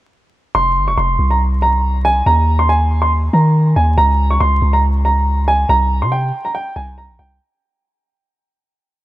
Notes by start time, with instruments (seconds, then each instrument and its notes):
0.55 808-style bass F1, upright piano C6
0.76 808-style bass G1
0.88 808-style bass F1, upright piano C#6
0.98 808-style bass F1, upright piano C6
1.19 808-style bass C2
1.31 upright piano A#5
1.62 upright piano A#5
2.05 upright piano G#5
2.26 808-style bass D#2, upright piano A#5
2.59 upright piano C6
2.69 upright piano G#5
3.02 upright piano C6
3.33 808-style bass D#3, upright piano A#5
3.76 808-style bass D#2, upright piano G#5
3.98 808-style bass C#2, upright piano A#5
4.30 upright piano C#6
4.40 808-style bass C#2, upright piano C6
4.62 808-style bass C#2
4.73 upright piano A#5
5.05 upright piano A#5
5.48 upright piano G#5
5.69 808-style bass C2, upright piano A#5
6.02 808-style bass C3, upright piano C6
6.12 upright piano G5
6.45 upright piano A#5
6.55 upright piano G5
6.76 808-style bass C2, upright piano G#5
6.98 upright piano A#5
7.09 808-style bass A#1
7.19 808-style bass C2, upright piano G5